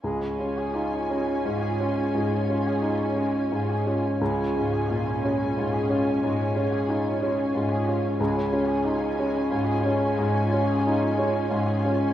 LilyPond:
<<
  \new Staff \with { instrumentName = "Violin section" } { \time 12/8 \key des \major \tempo 4. = 60 << { aes''1. | aes''1. | aes''1. | } \\ { aes16 des'16 f'16 aes'16 f'16 des'16 aes16 des'16 f'16 aes'16 f'16 des'16 aes16 des'16 f'16 aes'16 f'16 des'16 aes16 des'16 f'16 aes'16 f'16 des'16 | aes16 des'16 f'16 aes'16 f'16 des'16 aes16 des'16 f'16 aes'16 f'16 des'16 aes16 des'16 f'16 aes'16 f'16 des'16 aes16 des'16 f'16 aes'16 f'16 des'16 | aes16 des'16 f'16 aes'16 f'16 des'16 aes16 des'16 f'16 aes'16 f'16 des'16 aes16 des'16 f'16 aes'16 f'16 des'16 aes16 des'16 f'16 aes'16 f'16 des'16 | } >> }
  \new Staff \with { instrumentName = "Viola section" } { \time 12/8 \key des \major <des' f'>1. | <des' f'>1. | <des' f'>1. | }
  \new Staff \with { instrumentName = "Grand piano" } { \time 12/8 \key des \major des,8 des'8 ees'8 des'8 aes,8 des'8 aes,8 des'8 ees'8 des'8 aes,8 des'8 | des,8 aes,8 bes,8 des'8 aes,8 des'8 aes,8 des'8 ees'8 des'8 aes,8 des'8 | des,8 des'8 ees'8 des'8 aes,8 des'8 aes,8 des'8 ees'8 des'8 aes,8 des'8 | }
>>